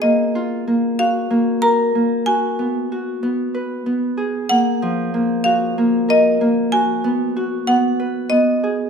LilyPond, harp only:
\new Staff \with { instrumentName = "Harp" } { \time 7/8 \key ees \minor \tempo 4 = 94 bes8 f'8 bes8 ges'8 bes8 bes'8 bes8 | fis'8 b8 fis'8 b8 b'8 b8 aes'8 | bes8 f8 bes8 ges'8 bes8 bes'8 bes8 | fis'8 b8 fis'8 b8 b'8 b8 aes'8 | }